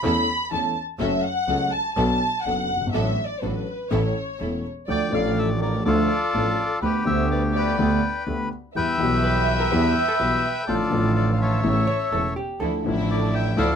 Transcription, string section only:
0.04 0.24 C#4 medium
0.04 0.24 E4 medium
0.04 0.24 A4 medium
0.52 0.72 C#4 soft
0.52 0.72 E4 soft
0.52 0.73 A4 soft
1.00 1.20 C#4 medium
1.00 1.20 F#4 medium
1.00 1.21 A4 medium
1.48 1.69 C#4 soft
1.48 1.69 F#4 soft
1.48 1.69 A4 medium
1.97 2.17 B3 medium
1.97 2.18 D4 medium
1.97 2.18 A4 medium
2.45 2.66 B3 soft
2.45 2.66 D4 soft
2.45 2.66 A4 medium
2.94 3.14 D4 medium
2.94 3.14 F#4 medium
2.94 3.14 A4 medium
3.42 3.63 D4 soft
3.42 3.63 F#4 soft
3.42 3.63 A4 medium
3.91 4.12 C#4 medium
3.91 4.12 E4 medium
3.91 4.12 A4 medium
4.40 4.61 C#4 soft
4.40 4.61 E4 soft
4.40 4.61 A4 soft
12.61 12.81 F3 medium
12.61 12.82 D4 soft
12.61 12.82 E4 medium
12.85 13.54 F3 medium
12.85 13.54 D4 medium
12.85 13.54 E4 loud
13.57 13.76 F3 medium
13.57 13.76 D4 medium
13.57 13.76 E4 medium

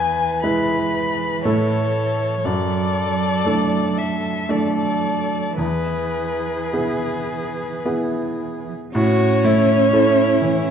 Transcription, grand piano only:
0.00 0.39 E2 medium
0.43 1.42 G#3 soft
0.43 1.42 E4 soft
0.43 1.42 B4 soft
1.45 2.42 A2 medium
1.45 2.41 A3 soft
1.45 2.41 E4 soft
1.45 2.41 A4 soft
2.45 3.43 F#2 medium
3.45 4.46 A3 soft
3.45 4.46 D4 soft
3.45 4.46 A4 soft
4.49 5.54 A3 soft
4.49 5.55 D4 soft
4.49 5.55 A4 soft
5.58 6.70 E2 soft
6.73 7.81 B3 soft
6.73 7.82 E4 soft
6.73 7.82 G#4 soft
7.85 8.91 B3 soft
7.85 8.91 E4 soft
7.85 8.91 G#4 soft
8.95 10.71 A2 medium
9.44 10.22 A3 medium
9.93 10.37 E4 soft
9.93 10.37 A4 medium
10.42 10.71 E3 soft

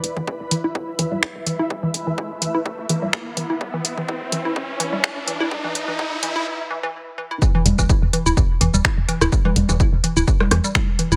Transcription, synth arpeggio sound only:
0.17 0.21 E3 medium
0.51 0.55 E3 medium
0.64 0.69 E4 medium
0.99 1.04 E3 medium
1.12 1.17 G3 medium
1.46 1.52 E3 medium
1.59 1.64 E4 medium
1.83 1.88 E3 loud
2.07 2.12 E3 medium
2.42 2.45 E3 medium
2.55 2.59 E4 loud
2.89 2.95 E3 medium
3.02 3.07 G3 medium
3.37 3.43 E3 medium
3.50 3.55 E4 loud
3.74 3.78 E3 loud
3.98 4.02 E3 medium
4.32 4.36 E3 medium
4.45 4.50 E4 loud
4.80 4.85 E3 loud
4.93 4.97 G3 medium
5.28 5.33 E3 medium
5.40 5.45 E4 loud
5.64 5.69 E3 loud
5.88 5.93 E3 medium
6.23 6.26 E3 medium
6.36 6.40 E4 loud
6.70 6.76 E3 medium
6.83 6.86 E3 loud
7.18 7.26 E3 medium
7.31 7.36 E4 medium
7.55 7.59 E3 loud
7.79 7.83 E3 medium
8.13 8.17 E3 medium
8.26 8.31 E4 loud
8.61 8.66 E3 medium
8.74 8.79 G3 medium
9.08 9.14 E3 medium
9.21 9.26 E4 loud
9.45 9.50 E3 loud
9.69 9.74 E3 medium
10.04 10.07 E3 medium
10.17 10.21 E4 loud
10.51 10.57 E3 medium
10.64 10.69 G3 medium
10.99 11.04 E3 medium
11.12 11.16 E4 loud

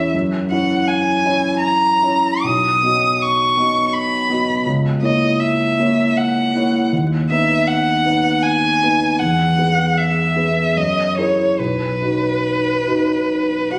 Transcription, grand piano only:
0.00 0.16 C#4 soft
0.00 0.16 E4 soft
0.00 0.16 C#5 soft
0.14 0.50 F#2 soft
0.52 1.20 C#4 soft
0.52 1.20 E4 soft
0.52 1.20 C#5 soft
1.25 1.98 C#4 soft
1.25 1.98 E4 soft
1.25 1.99 C#5 soft
2.03 2.39 C#4 soft
2.03 2.39 E4 soft
2.03 2.39 C#5 soft
2.44 2.81 B1 soft
2.83 3.53 B3 soft
2.83 3.53 F#4 soft
2.83 3.53 D#5 soft
3.57 4.25 B3 soft
3.57 4.26 F#4 soft
3.57 4.26 D#5 soft
4.30 4.62 B3 soft
4.30 4.62 F#4 soft
4.30 4.62 D#5 soft
4.65 5.01 C#2 soft
5.02 5.74 A#3 soft
5.02 5.74 E4 soft
5.02 5.74 C#5 soft
5.79 6.51 A#3 soft
5.79 6.51 E4 soft
5.79 6.51 C#5 soft
6.55 6.89 A#3 soft
6.55 6.89 E4 soft
6.55 6.89 C#5 soft
6.92 7.29 D#2 soft
7.30 8.01 B3 soft
7.30 8.02 D#4 soft
7.30 8.02 B4 soft
8.05 8.77 B3 soft
8.05 8.78 D#4 soft
8.05 8.78 B4 soft
8.83 9.17 B3 soft
8.83 9.17 D#4 soft
8.83 9.17 B4 soft
9.21 9.57 E2 soft
9.58 10.32 B3 soft
9.58 10.32 G#4 soft
9.58 10.32 B4 soft
10.36 10.72 B3 soft
10.36 10.72 G#4 soft
10.36 10.73 B4 soft
10.76 11.16 F#2 soft
11.18 11.55 E4 soft
11.18 11.55 G#4 soft
11.18 11.55 A#4 soft
11.59 12.00 B1 soft
12.01 12.83 D#4 soft
12.01 12.84 F#4 soft
12.01 12.84 B4 soft
12.87 13.68 D#4 soft
12.87 13.68 F#4 soft
12.87 13.68 B4 soft
13.72 13.79 D#4 soft
13.72 13.79 F#4 soft
13.72 13.79 B4 soft

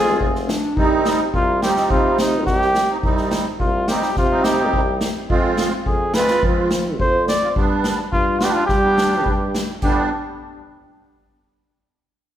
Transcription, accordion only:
0.00 0.28 G#3 medium
0.00 0.28 C4 medium
0.00 0.28 F4 medium
0.77 1.20 G3 medium
0.77 1.20 C4 medium
0.77 1.20 D#4 medium
1.62 2.19 G3 medium
1.62 2.19 C4 medium
1.62 2.20 D#4 medium
2.90 2.97 C4 medium
2.90 2.97 D#4 medium
3.03 3.46 G3 medium
3.03 3.46 C4 medium
3.03 3.46 D#4 medium
3.89 4.10 G3 medium
3.89 4.10 C4 medium
3.89 4.10 D#4 medium
4.30 4.80 G3 medium
4.30 4.81 C4 medium
4.30 4.81 D#4 medium
5.29 5.72 G#3 medium
5.29 5.72 C4 medium
5.29 5.73 F4 medium
6.14 6.71 G#3 medium
6.14 6.71 C4 medium
6.14 6.72 F4 medium
7.42 7.49 C4 medium
7.42 7.50 F4 medium
7.56 7.99 G3 medium
7.56 7.99 B3 medium
7.56 7.99 D4 medium
8.41 8.63 G3 medium
8.41 8.62 B3 medium
8.41 8.63 D4 medium
8.82 9.33 G3 medium
8.82 9.34 B3 soft
8.82 9.34 D4 medium
9.83 10.10 G3 medium
9.83 10.10 B3 medium
9.83 10.10 D4 medium

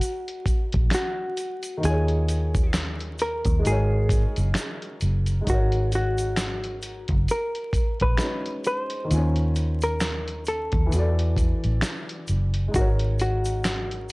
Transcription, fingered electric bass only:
0.74 0.90 A#1 medium
1.84 3.42 D#2 loud
3.46 3.62 D#2 medium
3.66 4.25 G#1 loud
4.38 4.53 F#1 medium
5.02 5.40 F#1 medium
5.47 7.06 G#1 medium
7.09 7.26 F#1 medium
8.02 8.17 A#1 medium
9.11 10.69 D#2 loud
10.73 10.89 D#2 medium
10.93 11.52 E2 medium
11.65 11.80 A1 medium
12.29 12.67 F#1 medium
12.75 14.12 G#1 loud

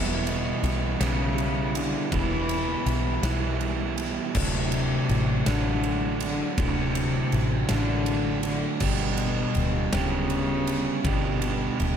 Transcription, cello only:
0.00 1.03 B2 loud
1.01 1.77 C#3 loud
1.75 2.13 D3 loud
2.12 3.23 E3 loud
4.36 5.49 C3 loud
5.48 6.21 D3 loud
6.23 6.56 D3 loud
6.60 7.66 C3 loud
7.71 8.40 D3 loud
8.46 8.79 D3 loud
8.83 9.89 B2 loud
9.93 11.07 C#3 loud
11.06 11.97 B2 medium

